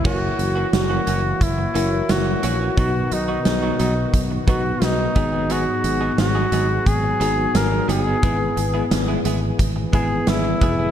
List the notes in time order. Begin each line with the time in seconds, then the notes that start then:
0.04 F#1 E3 A#3 C#4 E4 F#4 A#4 C#5, kick, crash
0.39 F#1, muted clean electric guitar stroke, closed hi-hat
0.55 E3 A#3 C#4 F#4
0.73 F#1 F#4, muted clean electric guitar stroke, snare, closed hi-hat
0.90 E3 A#3 C#4 F#4
1.07 F#1 E3 A#3 C#4 F#4, closed hi-hat
1.41 F#1 E4, kick, closed hi-hat
1.58 muted clean electric guitar stroke
1.74 F#1 E3 A#3 C#4 E4 F#4 A#4 C#5, closed hi-hat
2.09 F#1 F#4, muted clean electric guitar stroke, snare, closed hi-hat
2.26 muted clean electric guitar stroke
2.43 A#1 E3 A#3 C#4 F#4, closed hi-hat
2.60 E3 A#3 C#4 F#4
2.77 B1 B2 D#3 F#3 B3 D#4 F#4 B4, kick, closed hi-hat
2.94 muted clean electric guitar stroke
3.11 B1 D#4, muted clean electric guitar stroke, closed hi-hat
3.28 F#3 B3 D#4 F#4
3.45 B1, muted clean electric guitar stroke, snare, closed hi-hat
3.62 F#3 B3 D#4 F#4
3.79 B1 F#3 B3 D#4 F#4, closed hi-hat
3.96 muted clean electric guitar stroke
4.14 B1, kick, closed hi-hat
4.31 muted clean electric guitar stroke
4.47 B1 F#3 B3 D#4 F#4 B4, kick, closed hi-hat
4.66 muted clean electric guitar stroke
4.82 B1 D#4, muted clean electric guitar stroke, snare, closed hi-hat
4.99 muted clean electric guitar stroke
5.15 G#1 G#2 F#3 B3 D#4 F#4 G#4, kick, closed hi-hat
5.33 F#3 B3 D#4 G#4
5.49 F#3 B3 D#4 F#4 G#4, closed hi-hat
5.67 muted clean electric guitar stroke
5.84 G#1, muted clean electric guitar stroke, closed hi-hat
6.01 F#3 B3 D#4 G#4
6.18 G#1 F#4, muted clean electric guitar stroke, snare, closed hi-hat
6.35 F#3 B3 D#4 G#4
6.52 G#1 F#3 B3 D#4 G#4, closed hi-hat
6.70 muted clean electric guitar stroke
6.86 G#1 G#4, kick, closed hi-hat
7.03 muted clean electric guitar stroke
7.20 G#1 F#3 B3 D#4 F#4 G#4, closed hi-hat
7.37 muted clean electric guitar stroke
7.54 G#1 A#4, muted clean electric guitar stroke, snare, closed hi-hat
7.71 muted clean electric guitar stroke
7.88 G1 F#3 B3 D#4 G#4, closed hi-hat
8.05 F#3 B3 D#4 G#4
8.22 G#1 G#2 E3 G#3 B3 E4 G#4 B4, kick, closed hi-hat
8.57 G#1, muted clean electric guitar stroke, closed hi-hat
8.74 G#3 B3 E4 G#4
8.91 G#1, muted clean electric guitar stroke, snare, closed hi-hat
9.08 G#3 B3 E4 G#4
9.25 G#1 G#3 B3 E4 G#4, closed hi-hat
9.42 muted clean electric guitar stroke
9.59 G#1, muted clean electric guitar stroke, kick, closed hi-hat
9.76 muted clean electric guitar stroke
9.93 G#1 G#3 B3 E4 G#4 B4, kick, closed hi-hat
10.12 muted clean electric guitar stroke
10.27 G#1 E4, muted clean electric guitar stroke, snare, closed hi-hat
10.44 muted clean electric guitar stroke
10.61 F1 G#3 B3 E4 G#4, kick, closed hi-hat
10.78 G#3 B3 E4 G#4